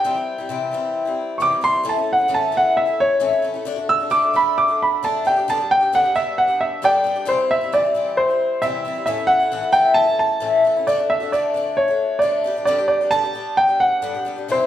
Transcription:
Already playing: grand piano G5
0.04 steel-string acoustic guitar C3 E3 G3 C4 E4
0.14 steel-string acoustic guitar G3 C4 E4
0.38 steel-string acoustic guitar G3 C4 E4
0.49 steel-string acoustic guitar C3 E3 G3 C4 E4
0.72 steel-string acoustic guitar E3 G3 C4 E4
1.05 steel-string acoustic guitar G3 C4 E4
1.38 steel-string acoustic guitar C3 E3 G3 C4 E4, grand piano C#6 D6
1.51 steel-string acoustic guitar G3 C4 E4
1.61 steel-string acoustic guitar E3 G3 C4 E4, grand piano C6
1.73 steel-string acoustic guitar G3 C4 E4
1.84 steel-string acoustic guitar A2 E3 A3 C#4 E4
1.89 grand piano A5
1.96 steel-string acoustic guitar A3 C#4 E4
2.13 grand piano F#5
2.19 steel-string acoustic guitar A3 C#4 E4
2.28 steel-string acoustic guitar A2 E3 A3 C#4 E4
2.34 grand piano A5
2.52 steel-string acoustic guitar E3 A3 C#4 E4
2.57 grand piano F#5
2.77 grand piano E5
2.86 steel-string acoustic guitar A3 C#4 E4
3.00 grand piano C#5
3.20 steel-string acoustic guitar A2 E3 A3 C#4 E4
3.31 steel-string acoustic guitar A3 C#4 E4
3.42 steel-string acoustic guitar E3 A3 C#4 E4
3.54 steel-string acoustic guitar A3 C#4 E4
3.65 steel-string acoustic guitar D3 A3 D4 F#4
3.76 steel-string acoustic guitar A3 D4 F#4
3.89 grand piano E6
4.00 steel-string acoustic guitar A3 D4 F#4
4.10 steel-string acoustic guitar D3 A3 D4 F#4, grand piano D6
4.22 steel-string acoustic guitar A3 D4 F#4
4.33 steel-string acoustic guitar D3 A3 D4 F#4, grand piano B5
4.58 grand piano D6
4.68 steel-string acoustic guitar A3 D4 F#4
4.83 grand piano B5
5.03 steel-string acoustic guitar D3 A3 D4 F#4, grand piano A5
5.25 steel-string acoustic guitar G3 B3 D4 G4, grand piano G5
5.37 steel-string acoustic guitar G3 B3 D4 G4
5.48 steel-string acoustic guitar G2 D3 G3 B3 D4 G4, grand piano A5
5.59 steel-string acoustic guitar G3 B3 D4 G4
5.71 grand piano G5
5.81 steel-string acoustic guitar G3 B3 D4 G4
5.93 steel-string acoustic guitar G2 D3 G3 B3 D4 G4, grand piano F#5
6.03 steel-string acoustic guitar G3 B3 D4 G4
6.15 steel-string acoustic guitar G3 B3 D4 G4, grand piano E5
6.38 grand piano F#5
6.47 steel-string acoustic guitar G3 B3 D4 G4
6.61 grand piano E5
6.82 steel-string acoustic guitar G2 D3 G3 B3 D4 G4, grand piano D5 G5
7.04 steel-string acoustic guitar G3 B3 D4 G4
7.16 steel-string acoustic guitar G3 B3 D4 G4
7.25 steel-string acoustic guitar C3 E3 G3 C4 E4, grand piano C5
7.38 steel-string acoustic guitar G3 C4 E4
7.51 grand piano E5
7.61 steel-string acoustic guitar G3 C4 E4
7.72 steel-string acoustic guitar C3 E3 G3 C4 E4, grand piano D5
7.83 steel-string acoustic guitar G3 C4 E4
7.94 steel-string acoustic guitar E3 G3 C4 E4
8.17 grand piano C5
8.29 steel-string acoustic guitar G3 C4 E4
8.62 steel-string acoustic guitar C3 E3 G3 C4 E4, grand piano E5
8.85 steel-string acoustic guitar E3 G3 C4 E4
8.95 steel-string acoustic guitar G3 C4 E4
9.06 steel-string acoustic guitar A2 E3 A3 C#4 E4, grand piano E5
9.18 steel-string acoustic guitar A3 C#4 E4
9.27 grand piano F#5
9.40 steel-string acoustic guitar A3 C#4 E4
9.52 steel-string acoustic guitar A2 E3 A3 C#4 E4
9.61 steel-string acoustic guitar A3 C#4 E4
9.72 steel-string acoustic guitar E3 A3 C#4 E4, grand piano G5
9.94 grand piano A5
10.07 steel-string acoustic guitar A3 C#4 E4
10.19 grand piano A5
10.40 steel-string acoustic guitar A2 E3 A3 C#4 E4
10.64 steel-string acoustic guitar E3 A3 C#4 E4
10.77 steel-string acoustic guitar A3 C#4 E4
10.87 steel-string acoustic guitar D3 A3 D4 F#4, grand piano D5
10.98 steel-string acoustic guitar A3 D4 F#4
11.10 grand piano E5
11.20 steel-string acoustic guitar A3 D4 F#4
11.32 steel-string acoustic guitar D3 A3 D4 F#4, grand piano D5
11.54 steel-string acoustic guitar D3 A3 D4 F#4
11.77 grand piano C#5
11.88 steel-string acoustic guitar A3 D4 F#4
12.19 steel-string acoustic guitar D3 A3 D4, grand piano D5
12.24 steel-string acoustic guitar F#4
12.44 steel-string acoustic guitar G3 B3 D4 G4
12.56 steel-string acoustic guitar G3 B3 D4 G4
12.65 steel-string acoustic guitar G2 D3 G3 B3 D4 G4, grand piano D5
12.79 steel-string acoustic guitar G3 B3 D4 G4
12.88 grand piano D5
13.01 steel-string acoustic guitar G3 B3 D4 G4
13.11 steel-string acoustic guitar G2 D3 G3 B3 D4 G4, grand piano A5
13.23 steel-string acoustic guitar G3 B3 D4 G4
13.33 steel-string acoustic guitar G3 B3 D4 G4
13.57 grand piano G5
13.67 steel-string acoustic guitar G3 B3 D4 G4
13.80 grand piano F#5
14.02 steel-string acoustic guitar G2 D3 G3 B3 D4 G4
14.14 steel-string acoustic guitar G3 B3 D4 G4
14.25 steel-string acoustic guitar G3 B3 D4 G4
14.36 steel-string acoustic guitar G3 B3 D4 G4
14.48 steel-string acoustic guitar C3 E3 G3 C4 E4, grand piano C5
14.60 steel-string acoustic guitar G3 C4 E4

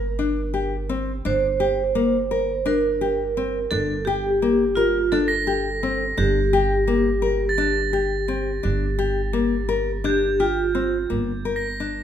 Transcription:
Already playing: upright bass G1, vibraphone A#4
0.19 nylon-string guitar D4
0.54 nylon-string guitar G4
0.89 nylon-string guitar C4
1.25 upright bass G1, nylon-string guitar D4, vibraphone C5
1.60 nylon-string guitar G4
1.95 nylon-string guitar A#3
2.31 nylon-string guitar A#4
2.66 nylon-string guitar D4, vibraphone A#4
3.01 nylon-string guitar G4
3.37 nylon-string guitar C4
3.71 upright bass G1, nylon-string guitar D4, vibraphone A4
4.05 vibraphone G4, nylon-string guitar G4
4.42 nylon-string guitar A#3
4.75 vibraphone F4, nylon-string guitar A#4
5.12 nylon-string guitar D4, vibraphone A4
5.28 crotales A#6
5.47 nylon-string guitar G4
5.83 nylon-string guitar C4
6.17 upright bass G1, nylon-string guitar D4, vibraphone G4
6.53 nylon-string guitar G4
6.87 nylon-string guitar A#3
7.22 nylon-string guitar A#4
7.49 crotales A6
7.58 nylon-string guitar D4
7.93 nylon-string guitar G4
8.28 nylon-string guitar C4
8.63 upright bass G1, nylon-string guitar D4
8.99 nylon-string guitar G4
9.33 nylon-string guitar A#3
9.69 nylon-string guitar A#4
10.04 nylon-string guitar D4, vibraphone G4, crotales G6
10.40 vibraphone F4, nylon-string guitar G4
10.75 nylon-string guitar C4
11.10 upright bass G1, nylon-string guitar A#3
11.45 nylon-string guitar A#4
11.56 crotales A#6
11.80 nylon-string guitar D4

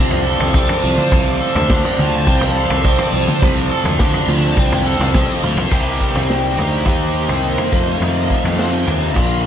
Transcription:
Already playing: fingered electric bass C2, overdriven electric guitar C3 F3 C4 D4 A4, string section C5 D5 F5 A5
0.11 floor tom
0.26 overdriven electric guitar A4
0.40 fingered electric bass C2, floor tom
0.54 overdriven electric guitar C4, kick
0.69 floor tom
0.83 fingered electric bass C2, overdriven electric guitar F3
0.98 mid tom
1.12 fingered electric bass C2, overdriven electric guitar C3, kick, floor tom
1.41 overdriven electric guitar A4
1.55 fingered electric bass D2, floor tom
1.70 overdriven electric guitar D4, kick, snare
1.85 floor tom
1.98 fingered electric bass D2, overdriven electric guitar F3, mid tom
2.27 fingered electric bass C2, overdriven electric guitar C4, kick
2.41 floor tom
2.57 overdriven electric guitar A4
2.70 fingered electric bass C2, floor tom
2.85 overdriven electric guitar C4, kick
2.99 floor tom
3.12 fingered electric bass C2, overdriven electric guitar F3
3.28 mid tom
3.42 fingered electric bass C2, overdriven electric guitar C3, kick, floor tom
3.71 overdriven electric guitar A4
3.84 fingered electric bass D2, floor tom
3.99 overdriven electric guitar D4, kick, snare, mid tom
4.14 floor tom
4.26 fingered electric bass D2, overdriven electric guitar F3, mid tom
4.56 fingered electric bass C2, overdriven electric guitar C4, kick
4.72 floor tom
4.86 overdriven electric guitar A4
4.99 fingered electric bass C2, floor tom
5.14 overdriven electric guitar C4, kick, snare
5.42 fingered electric bass D2, overdriven electric guitar F3, mid tom
5.56 fingered electric bass C2, floor tom
5.71 fingered electric bass C2, overdriven electric guitar C3 D#3 G3 C4 G4, string section C5 D#5 G5 A#5, kick, floor tom, crash
6.00 kick
6.14 fingered electric bass C2, floor tom
6.30 snare
6.56 fingered electric bass D2, overdriven electric guitar C3 D#3 G3 C4 G4, floor tom
6.85 fingered electric bass D#2, overdriven electric guitar D#3 A#3 D#4 G4, kick, floor tom
7.29 fingered electric bass C2, floor tom
7.58 floor tom
7.71 overdriven electric guitar F2 C3 D#3 A3 D#4 F4, fingered electric bass F2, string section F5 A5, kick
8.00 fingered electric bass F2, floor tom
8.30 kick
8.44 fingered electric bass F2, floor tom
8.58 overdriven electric guitar F2 C3 D#3 A3 D#4 F4, snare
8.87 fingered electric bass D#2, floor tom
9.15 fingered electric bass A#1, overdriven electric guitar A#2 D3 A#3 D4 F4, string section A#4 D5 F5 A#5, kick, floor tom

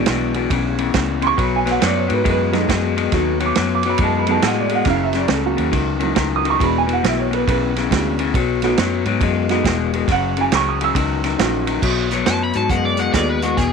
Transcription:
Already playing: upright piano E3 G#3 B3 D4
0.06 fingered electric bass B1, clean electric guitar E2 B2, snare, ride
0.34 clean electric guitar E2 B2, ride
0.50 fingered electric bass B1, clean electric guitar E2 C#3, kick, ride
0.78 clean electric guitar E2 C#3, ride
0.94 fingered electric bass C#2, clean electric guitar E2 C#3, kick, snare, ride
1.22 clean electric guitar E2 C#3, upright piano C6, ride
1.27 upright piano C#6
1.37 fingered electric bass B1, clean electric guitar B2 F#3, upright piano B5, kick, ride
1.56 upright piano G#5
1.66 clean electric guitar B2 F#3, snare, ride
1.71 upright piano F#5
1.81 fingered electric bass F#2, clean electric guitar B2 F#3, snare, ride
1.86 upright piano D5
1.97 upright piano C#5
2.08 fingered electric bass G#2, clean electric guitar B2 F#3, ride
2.14 upright piano B4
2.24 fingered electric bass F#2, clean electric guitar B2 G#3, kick, ride
2.30 upright piano B4
2.52 clean electric guitar B2 G#3, upright piano F#3 A3 B3 D#4, snare, ride
2.69 fingered electric bass F#2, clean electric guitar B2 G#3, kick, snare, ride
2.96 clean electric guitar B2 G#3, ride
3.12 fingered electric bass D#2, clean electric guitar B2 F#3, upright piano F#3 A3 B3 D#4, kick, snare, ride
3.40 clean electric guitar B2 F#3, ride
3.46 upright piano D6
3.55 fingered electric bass F#2, clean electric guitar B2 F#3, snare, ride
3.75 upright piano D6
3.83 clean electric guitar B2 F#3, ride
3.90 upright piano B5
3.98 fingered electric bass F#2, clean electric guitar B2 G#3, kick, ride
4.04 upright piano A5
4.19 upright piano B5
4.27 clean electric guitar B2 G#3, upright piano F#3 A3 B3 D#4, ride
4.31 upright piano A5
4.42 fingered electric bass A2, clean electric guitar B2 G#3, upright piano F#5, snare, ride
4.60 upright piano D5
4.69 clean electric guitar B2 G#3, ride
4.75 upright piano F#5
4.85 fingered electric bass F#1, clean electric guitar F#2 C#3, upright piano F#3 A#3 C#4 E4, kick, snare, ride
4.89 upright piano F5
5.03 upright piano E5
5.13 clean electric guitar F#2 C#3, snare, ride
5.18 upright piano D5
5.28 fingered electric bass C#2, clean electric guitar F#2 C#3, snare, ride
5.33 upright piano A4
5.46 upright piano A#3 F#4
5.57 fingered electric bass D#2, clean electric guitar F#2 C#3, ride
5.72 fingered electric bass C#2, clean electric guitar F#2 D#3, kick, ride
6.00 clean electric guitar F#2 D#3, upright piano F#3 A#3 C#4 E4, ride
6.15 fingered electric bass C#2, clean electric guitar F#2 D#3, kick, snare, ride
6.36 upright piano D#6
6.44 clean electric guitar F#2 D#3, ride
6.50 upright piano C#6
6.59 fingered electric bass E1, clean electric guitar E2 B2, upright piano G#3 B3 D4 E4, kick, ride
6.64 upright piano B5
6.78 upright piano G#5
6.87 clean electric guitar E2 B2, ride
6.93 upright piano F#5
7.03 fingered electric bass B1, clean electric guitar E2 B2, snare, ride
7.08 upright piano E5
7.19 upright piano C#5
7.31 clean electric guitar E2 B2, upright piano B4, ride
7.47 fingered electric bass B1, clean electric guitar E2 C#3, upright piano B4, kick, ride
7.76 clean electric guitar E2 C#3, snare, ride
7.91 fingered electric bass D2, clean electric guitar E2 C#3, upright piano G#3 B3 D4 F#4, kick, snare, ride
8.19 clean electric guitar E2 C#3, ride
8.34 fingered electric bass B1, clean electric guitar B2 F#3, kick, ride
8.62 clean electric guitar B2 F#3, upright piano A3 B3 D#4 F#4, snare, ride
8.77 fingered electric bass F#2, clean electric guitar B2 F#3, snare, ride
9.05 fingered electric bass G#2, clean electric guitar B2 F#3, ride
9.21 fingered electric bass F#2, clean electric guitar B2 G#3, kick, ride
9.49 clean electric guitar B2 G#3, upright piano A3 B3 D#4 F#4, snare, ride
9.64 fingered electric bass E1, clean electric guitar B2 G#3, kick, snare, ride
9.93 clean electric guitar B2 G#3, ride
10.08 fingered electric bass F#1, clean electric guitar F#2 C#3, upright piano F#5, kick, snare, ride
10.37 clean electric guitar F#2 C#3, ride
10.41 upright piano G#5
10.52 fingered electric bass C#2, clean electric guitar F#2 C#3, upright piano C#6, snare, ride
10.69 upright piano D#6
10.81 clean electric guitar F#2 C#3, upright piano E6, ride
10.95 fingered electric bass C#2, clean electric guitar F#2 D#3, kick, ride
11.24 clean electric guitar F#2 D#3, snare, ride
11.38 fingered electric bass A#1, clean electric guitar F#2 D#3, upright piano A#3 C#4 E4 F#4, snare, ride
11.67 clean electric guitar F#2 D#3, ride
11.82 fingered electric bass B1, clean electric guitar B2 F#3, kick, crash
12.11 clean electric guitar B2 F#3, snare, closed hi-hat
12.26 fingered electric bass F#2, clean electric guitar B2 F#3, overdriven electric guitar A5, snare, closed hi-hat
12.44 overdriven electric guitar B5
12.53 fingered electric bass G#2, clean electric guitar B2 F#3, overdriven electric guitar A5, closed hi-hat
12.70 fingered electric bass F#2, clean electric guitar B2 G#3, overdriven electric guitar F#5, kick, closed hi-hat
12.85 overdriven electric guitar D5
12.97 clean electric guitar B2 G#3, overdriven electric guitar F#5, closed hi-hat
13.13 fingered electric bass D#2, clean electric guitar B2 G#3, upright piano A3 B3 D#4 F#4 A4, overdriven electric guitar D5, kick, snare, closed hi-hat
13.29 overdriven electric guitar B4
13.42 clean electric guitar B2 G#3, overdriven electric guitar F#4, closed hi-hat
13.57 fingered electric bass E1, clean electric guitar E2 B2, overdriven electric guitar G#4, kick, snare, closed hi-hat

